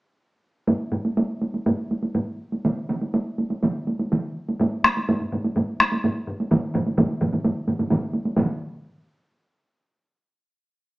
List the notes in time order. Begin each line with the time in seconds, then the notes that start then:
0.67 taiko low-mid, taiko high
0.92 taiko low-mid, taiko high
1.05 taiko high
1.17 taiko high
1.42 taiko high
1.54 taiko high
1.66 taiko low-mid, taiko high
1.91 taiko high
2.03 taiko high
2.15 taiko low-mid, taiko high
2.52 taiko high
2.65 taiko mid, taiko high
2.89 taiko mid, taiko high
3.01 taiko high
3.14 taiko high
3.38 taiko high
3.50 taiko high
3.63 taiko mid, taiko high
3.87 taiko high
3.99 taiko high
4.12 taiko mid, taiko high
4.49 taiko high
4.60 taiko low-mid, taiko high
4.84 taiko rim, taiko high
4.97 taiko high
5.08 taiko low-mid, taiko high
5.20 taiko low-mid
5.32 taiko low-mid, taiko high
5.44 taiko high
5.56 taiko low-mid, taiko high
5.80 taiko rim, taiko high
5.92 taiko high
6.04 taiko low-mid, taiko high
6.27 taiko low-mid
6.40 taiko high
6.51 taiko low-mid, taiko mid, taiko high
6.74 taiko low-mid, taiko mid, taiko high
6.87 taiko high
6.98 taiko low-mid, taiko mid, taiko high
7.21 taiko low-mid, taiko mid, taiko high
7.33 taiko low-mid, taiko mid, taiko high
7.45 taiko low-mid, taiko mid, taiko high
7.68 taiko low-mid, taiko mid, taiko high
7.79 taiko low-mid, taiko mid, taiko high
7.90 taiko low-mid, taiko mid, taiko high
8.13 taiko high
8.25 taiko high
8.36 taiko low-mid, taiko mid, taiko high